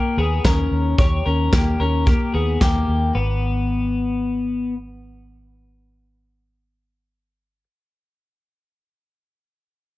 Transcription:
Already playing: clean electric guitar A#3 G4
0.17 fingered electric bass D#2, clean electric guitar B3 G#4
0.44 fingered electric bass D#2, clean electric guitar C#4 A#4, kick, snare, closed hi-hat
0.71 fingered electric bass D#2
0.98 fingered electric bass D#2, clean electric guitar G4 C#5, kick, closed hi-hat
1.26 fingered electric bass D#2, clean electric guitar C#4 A#4
1.53 fingered electric bass D#2, clean electric guitar A#3 G4, kick, snare, closed hi-hat
1.80 fingered electric bass D#2, clean electric guitar C#4 A#4
2.07 clean electric guitar A#3 G4, kick, closed hi-hat
2.34 fingered electric bass D#2, clean electric guitar B3 G#4
2.61 fingered electric bass D#2, clean electric guitar A#3 G4, kick, snare, closed hi-hat
2.88 fingered electric bass D#2
3.15 fingered electric bass G#1, clean electric guitar B3

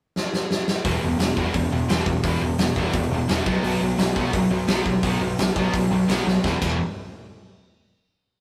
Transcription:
0.16 snare
0.34 snare
0.51 snare
0.68 snare
0.85 picked electric bass E1, distorted electric guitar E2 B2 E3, kick, open hi-hat
1.03 picked electric bass E1, distorted electric guitar E2 B2
1.19 picked electric bass E1, distorted electric guitar E2 B2, snare, open hi-hat
1.37 picked electric bass E1, distorted electric guitar E2 B2 E3, kick
1.54 picked electric bass E1, distorted electric guitar E2 B2, kick, open hi-hat
1.72 picked electric bass E1, distorted electric guitar E2 B2
1.89 picked electric bass E1, distorted electric guitar E2 B2 E3, snare, open hi-hat
2.06 picked electric bass E1, distorted electric guitar E2 B2, kick
2.23 picked electric bass E1, distorted electric guitar E2 B2 E3, kick, open hi-hat
2.41 picked electric bass E1, distorted electric guitar E2 B2
2.58 picked electric bass E1, distorted electric guitar E2 B2, snare, open hi-hat
2.76 picked electric bass E1, distorted electric guitar E2 B2 E3, kick
2.93 picked electric bass E1, distorted electric guitar E2 B2, kick, open hi-hat
3.11 picked electric bass E1, distorted electric guitar E2 B2
3.29 picked electric bass E1, distorted electric guitar E2 B2 E3, snare, open hi-hat
3.46 picked electric bass B1, distorted electric guitar B2 F#3 B3, kick
3.63 picked electric bass B1, distorted electric guitar B2 F#3 B3, open hi-hat
3.81 picked electric bass B1, distorted electric guitar B2 F#3
3.98 picked electric bass B1, distorted electric guitar B2 F#3, snare, open hi-hat
4.15 picked electric bass B1, distorted electric guitar B2 F#3 B3, kick
4.33 picked electric bass B1, distorted electric guitar B2 F#3, kick, open hi-hat
4.51 picked electric bass B1, distorted electric guitar B2 F#3
4.68 picked electric bass B1, distorted electric guitar B2 F#3 B3, snare, open hi-hat
4.85 picked electric bass B1, distorted electric guitar B2 F#3, kick
5.03 picked electric bass B1, distorted electric guitar B2 F#3 B3, kick, open hi-hat
5.21 picked electric bass B1, distorted electric guitar B2 F#3
5.38 picked electric bass B1, distorted electric guitar B2 F#3, snare, open hi-hat
5.56 picked electric bass B1, distorted electric guitar B2 F#3 B3, kick
5.73 picked electric bass B1, distorted electric guitar B2 F#3, kick, open hi-hat
5.91 picked electric bass B1, distorted electric guitar B2 F#3
6.08 picked electric bass B1, distorted electric guitar B2 F#3 B3, snare, open hi-hat
6.26 picked electric bass B1, distorted electric guitar B2 F#3, snare
6.44 picked electric bass E1, distorted electric guitar E2 B2 E3, kick, snare
6.61 picked electric bass E1, distorted electric guitar E2 B2 E3, kick, crash

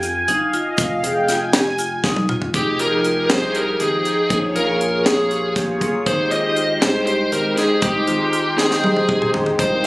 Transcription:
Already playing: analog synth bass F2, analog synth pad G#5
0.03 vibraphone F4, closed hi-hat, shaker
0.28 analog synth bass G1, vibraphone D#4, analog synth pad F5, closed hi-hat
0.53 vibraphone F4, analog synth pad D#5, closed hi-hat
0.78 analog synth bass F1, vibraphone F4, analog synth pad F5, kick, closed hi-hat, shaker
1.03 analog synth bass F1, vibraphone G#4, analog synth pad G5, closed hi-hat
1.28 vibraphone F4, analog synth pad G#5, snare, closed hi-hat
1.53 vibraphone G4, snare, closed hi-hat
1.78 vibraphone F4, closed hi-hat, shaker
2.04 analog synth bass F1, vibraphone D#4, kick, snare
2.16 high tom
2.29 analog synth bass F1, vibraphone F4, mid tom
2.42 floor tom
2.54 analog synth bass F1, analog synth pad F3 D#4 G4 G#4, vibraphone D#4, lead electric guitar G4, kick, closed hi-hat
2.79 vibraphone F4, lead electric guitar A#4, closed hi-hat
3.04 vibraphone F4, closed hi-hat
3.17 analog synth pad F3 D#4 G4 G#4
3.30 analog synth bass C2, vibraphone G#4, lead electric guitar C5, snare, closed hi-hat
3.55 vibraphone G4, lead electric guitar A#4, closed hi-hat
3.79 analog synth bass G#1, analog synth pad F3 D#4 G#4 G5, vibraphone G4, lead electric guitar G#4, closed hi-hat
4.05 vibraphone G#4, closed hi-hat
4.30 analog synth bass A#1, analog synth pad A#3 F4 G#4 C#5, vibraphone D#4, lead electric guitar G#4, kick, closed hi-hat
4.56 analog synth bass A#1, vibraphone F4, lead electric guitar A#4, closed hi-hat
4.81 vibraphone F4, closed hi-hat
4.92 analog synth pad A#3 F4 G#4 C#5
5.06 lead electric guitar G#4, vibraphone G#4, snare, closed hi-hat
5.31 vibraphone G4, closed hi-hat
5.56 analog synth bass A#1, analog synth pad A#3 F4 G#4 C#5, vibraphone G4, kick, snare, closed hi-hat
5.81 analog synth bass G1, vibraphone G#4, kick, closed hi-hat
6.06 analog synth bass G#1, analog synth pad G#3 D#4 G4 C5, vibraphone D#4, lead electric guitar C5, kick, closed hi-hat
6.31 vibraphone F4, lead electric guitar D#5, closed hi-hat
6.56 vibraphone F4, closed hi-hat
6.69 analog synth pad G#3 D#4 G4 C5
6.82 analog synth bass C2, vibraphone G#4, lead electric guitar C5, snare, closed hi-hat
7.06 vibraphone G4, lead electric guitar C5, closed hi-hat
7.32 analog synth bass G#1, analog synth pad G#3 D#4 G4 C5, vibraphone G4, lead electric guitar A#4, closed hi-hat
7.57 vibraphone G#4, lead electric guitar G#4, snare, closed hi-hat
7.82 analog synth bass C2, analog synth pad G#3 D#4 G4 C5, vibraphone D#4, lead electric guitar G4, kick, closed hi-hat
8.07 analog synth bass G#1, vibraphone F4, closed hi-hat
8.33 vibraphone F4, closed hi-hat
8.45 analog synth pad G#3 D#4 C5 G5
8.58 vibraphone G#4, lead electric guitar G#4, snare
8.71 snare
8.83 vibraphone G4, high tom
8.97 high tom
9.08 analog synth bass G#1, analog synth pad G#3 D#4 G4 C5, vibraphone G4, kick, mid tom
9.22 mid tom
9.34 analog synth bass G#1, vibraphone G#4, floor tom
9.46 floor tom
9.59 analog synth bass C2, analog synth pad C3 C4 F4 A#4, vibraphone D#4, lead electric guitar C5, kick, closed hi-hat

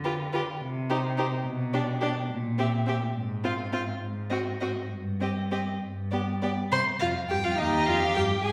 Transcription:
Already playing: cello D3
0.04 viola F4, violin G4 B4
0.33 viola F4, violin G4 B4
0.61 cello C3
0.90 viola D#4, violin G4 C5
1.18 viola D#4, violin G4 C5
1.45 cello B2
1.73 viola D4, violin G4 D5
2.01 viola D4, violin G4 D5
2.30 cello A#2
2.58 viola C4, violin G4 E5
2.86 viola C4, violin G4 E5
3.16 cello G#2
3.44 viola C4, violin F4 F5
3.73 viola C4, violin F4 F5
4.02 cello G#2
4.30 viola C4, violin F#4 D#5
4.61 viola C4, violin F#4 D#5
4.90 cello G2
5.21 viola C4, violin G4 D#5
5.51 viola C4, violin G4 D#5
5.81 cello G2
6.11 viola B3, violin G4 D5
6.42 viola B3, violin G4 D5
6.72 cello C3, viola C5, violin C6
7.00 cello F2, viola F4, violin F5
7.29 cello G2, viola G4, violin G5
7.44 cello F2, viola F4, violin F5
7.57 cello D#2, viola D#4, violin G4 D#5
7.87 cello F2, viola F4, violin F5
8.14 cello G2, viola G4, violin G5
8.43 cello G#2, violin G#4 G#5, viola G#4

